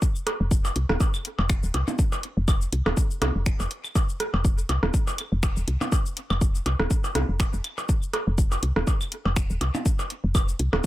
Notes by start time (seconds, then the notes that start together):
0.02 kick, shaker
0.16 shaker
0.27 cross-stick, closed hi-hat, percussion blips
0.40 F1
0.51 kick, shaker
0.65 percussion blips, shaker
0.76 C2, closed hi-hat
0.89 D#1, cross-stick, percussion blips
1.00 kick, percussion blips, shaker
1.14 claves, shaker
1.25 closed hi-hat
1.39 F1, percussion blips
1.50 finger snap, kick, shaker
1.63 D#1, shaker
1.74 C2, closed hi-hat, percussion blips
1.88 percussion blips, shaker
1.99 kick, shaker
2.12 percussion blips, shaker
2.23 closed hi-hat
2.37 F1
2.48 kick, claves, percussion blips, shaker
2.61 shaker
2.72 C2, closed hi-hat
2.86 D#1, cross-stick, percussion blips
2.97 kick, shaker
3.11 shaker
3.22 C2, cross-stick, closed hi-hat, percussion blips
3.35 F1
3.46 finger snap, kick, shaker
3.60 F1, percussion blips, shaker
3.71 closed hi-hat
3.84 claves, shaker
3.95 kick, percussion blips, shaker
4.09 shaker
4.20 cross-stick, closed hi-hat
4.34 F1, percussion blips
4.45 kick, shaker
4.58 shaker
4.69 C2, closed hi-hat, percussion blips
4.83 D#1, cross-stick, percussion blips
4.94 kick, shaker
5.07 percussion blips, shaker
5.18 closed hi-hat, claves
5.32 F1
5.43 finger snap, kick, percussion blips, shaker
5.57 D#1, shaker
5.68 C2, closed hi-hat
5.81 percussion blips, shaker
5.92 kick, percussion blips, shaker
6.06 shaker
6.17 closed hi-hat
6.30 F1, claves, percussion blips
6.41 kick, shaker
6.55 shaker
6.66 C2, closed hi-hat, percussion blips
6.79 D#1, cross-stick, percussion blips
6.91 kick, shaker
7.04 percussion blips, shaker
7.15 C2, cross-stick, closed hi-hat, percussion blips
7.29 F1
7.40 finger snap, kick, percussion blips, shaker
7.53 F1, shaker
7.64 closed hi-hat, claves
7.78 percussion blips, shaker
7.89 kick, shaker
8.03 shaker
8.13 cross-stick, closed hi-hat, percussion blips
8.27 F1
8.38 kick, shaker
8.52 percussion blips, shaker
8.63 C2, closed hi-hat
8.76 D#1, cross-stick, percussion blips
8.87 kick, percussion blips, shaker
9.01 claves, shaker
9.12 closed hi-hat
9.25 F1, percussion blips
9.36 finger snap, kick, shaker
9.50 D#1, shaker
9.61 C2, closed hi-hat, percussion blips
9.75 percussion blips, shaker
9.86 kick, shaker
9.99 percussion blips, shaker
10.10 closed hi-hat
10.24 F1
10.35 kick, claves, percussion blips, shaker
10.48 shaker
10.59 C2, closed hi-hat
10.73 D#1, cross-stick, percussion blips